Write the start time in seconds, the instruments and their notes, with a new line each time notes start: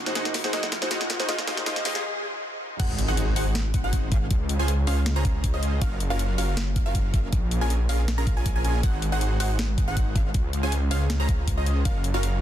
Already playing: analog synth pad C#3 F#3 F4 A#4, riser
0.04 clean electric guitar A#3 C4, supersaw synth D#4 F#4 G#4 C5 F#5, soft synth lead C5, snare
0.08 clean electric guitar F#4
0.14 clean electric guitar A#3 C4 D#4 F#4, supersaw synth D#4 F#4 G#4 C5 F#5, soft synth lead D#5, snare, closed hi-hat
0.25 snare
0.34 snare, open hi-hat
0.42 clean electric guitar A#3 C4 F#4, supersaw synth D#4 F#4 G#4 C5 F#5, soft synth lead C5, snare
0.52 clean electric guitar A#3 C4 D#4 F#4, supersaw synth D#4 F#4 G#4 C5 F#5, soft synth lead D#5, snare, closed hi-hat
0.63 snare
0.72 snare, closed hi-hat
0.80 clean electric guitar A#3 C4 F#4, supersaw synth D#4 F#4 G#4 C5 F#5, soft synth lead C5, snare
0.90 clean electric guitar A#3 C4 D#4 F#4, supersaw synth D#4 F#4 G#4 C5 F#5, soft synth lead D#5, snare, closed hi-hat
1.01 snare
1.10 snare, closed hi-hat
1.18 clean electric guitar A#3 C4 D#4 F#4, supersaw synth D#4 F#4 G#4 C5 F#5, soft synth lead C5, snare
1.28 analog synth pad G#3, clean electric guitar A#3 C4 D#4 F4, supersaw synth D#4 F4 G#4 C5 F5, soft synth lead D#5, snare, closed hi-hat
1.38 snare
1.47 clean electric guitar A#3 C4 D#4 F4, supersaw synth D#4 F4 G#4 C5 F5, soft synth lead D#5, snare, closed hi-hat
1.57 snare
1.65 clean electric guitar A#3 C4 D#4 F4, supersaw synth D#4 F4 G#4 C5 F5, soft synth lead D#5, snare, closed hi-hat
1.76 snare
1.84 clean electric guitar A#3 C4 D#4 F4, supersaw synth D#4 F4 G#4 C5 F5, soft synth lead D#5, snare, open hi-hat
1.95 snare
2.80 detuned saw bass G#1, supersaw synth D#4 F#4 G#4 C5 F#5, synth pluck F#5, kick, closed hi-hat, crash, impact
2.99 closed hi-hat
3.08 supersaw synth D#4 F#4 G#4 C5 F#5, synth pluck F#5
3.17 closed hi-hat
3.36 supersaw synth D#4 F#4 G#4 C5 F#5, synth pluck F#5, open hi-hat
3.55 snare, closed hi-hat
3.74 kick, closed hi-hat
3.84 supersaw synth D#4 F#4 G#4 C5 F#5, synth pluck F#5
3.93 kick, closed hi-hat
4.12 supersaw synth C#4 F4 G#4 C5 F5, synth pluck F5, kick, closed hi-hat
4.31 detuned saw bass C#2, kick, closed hi-hat
4.49 closed hi-hat
4.59 supersaw synth C#4 F4 G#4 C5 G#5, synth pluck G#5
4.68 closed hi-hat
4.87 supersaw synth C#4 F4 G#4 C5 F5, synth pluck F5, open hi-hat
5.06 snare, closed hi-hat
5.16 supersaw synth C#4 F4 G#4 C5 A#5, synth pluck A#5
5.25 kick, closed hi-hat
5.44 kick, closed hi-hat
5.54 supersaw synth C#4 F4 G#4 C5 D#5, synth pluck D#5
5.63 closed hi-hat
5.82 detuned saw bass F#1, supersaw synth C#4 F4 F#4 A#4 F5, synth pluck F5, kick, closed hi-hat
6.00 closed hi-hat
6.10 supersaw synth C#4 F4 F#4 A#4 F5, synth pluck F5
6.19 closed hi-hat
6.38 supersaw synth C#4 F4 F#4 A#4 F5, synth pluck F5, open hi-hat
6.57 snare, closed hi-hat
6.76 kick, closed hi-hat
6.86 supersaw synth C#4 F4 F#4 A#4 F5, synth pluck F5
6.95 kick, closed hi-hat
7.14 supersaw synth C#4 F4 G#4 A#4 F5, synth pluck F5, kick, closed hi-hat
7.33 detuned saw bass A#1, kick, closed hi-hat
7.51 closed hi-hat
7.61 supersaw synth C#4 F4 G#4 A#4 G#5, synth pluck G#5
7.70 closed hi-hat
7.89 supersaw synth C#4 F4 G#4 A#4 F5, synth pluck F5, open hi-hat
8.08 snare, closed hi-hat
8.18 supersaw synth C#4 F4 G#4 A#4 A#5, synth pluck A#5
8.27 kick, closed hi-hat
8.37 supersaw synth C#4 F4 G#4 A#4 G#5, synth pluck G#5
8.46 kick, closed hi-hat
8.56 supersaw synth C#4 F4 G#4 A#4 G#5, synth pluck G#5
8.65 supersaw synth C#4 F4 G#4 A#4 G#5, synth pluck G#5, closed hi-hat
8.83 detuned saw bass G#1, supersaw synth D#4 F#4 G#4 C5 F#5, synth pluck F#5, kick, closed hi-hat
9.02 closed hi-hat
9.12 supersaw synth D#4 F#4 G#4 C5 F#5, synth pluck F#5
9.21 closed hi-hat
9.40 supersaw synth D#4 F#4 G#4 C5 F#5, synth pluck F#5, open hi-hat
9.59 snare, closed hi-hat
9.78 kick, closed hi-hat
9.88 supersaw synth D#4 F#4 G#4 C5 F#5, synth pluck F#5
9.97 kick, closed hi-hat
10.15 supersaw synth C#4 F4 G#4 C5 F5, synth pluck F5, kick, closed hi-hat
10.34 detuned saw bass C#2, kick, closed hi-hat
10.53 closed hi-hat
10.63 supersaw synth C#4 F4 G#4 C5 G#5, synth pluck G#5
10.72 closed hi-hat
10.91 supersaw synth C#4 F4 G#4 C5 F5, synth pluck F5, open hi-hat
11.10 snare, closed hi-hat
11.20 supersaw synth C#4 F4 G#4 C5 A#5, synth pluck A#5
11.29 kick, closed hi-hat
11.48 kick, closed hi-hat
11.57 supersaw synth C#4 F4 G#4 C5 D#5, synth pluck D#5
11.66 closed hi-hat
11.85 detuned saw bass F#1, supersaw synth C#4 F4 F#4 A#4 F5, synth pluck F5, kick, closed hi-hat
12.04 closed hi-hat
12.14 supersaw synth C#4 F4 F#4 A#4 F5, synth pluck F5
12.23 closed hi-hat